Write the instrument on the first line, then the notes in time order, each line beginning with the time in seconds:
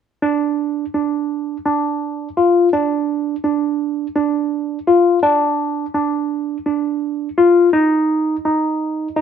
tine electric piano
0.22 D4
0.94 D4
1.65 D4
2.37 F4
2.73 D4
3.44 D4
4.16 D4
4.87 F4
5.23 D4
5.94 D4
6.66 D4
7.38 F4
7.73 D#4
8.45 D#4
9.16 D#4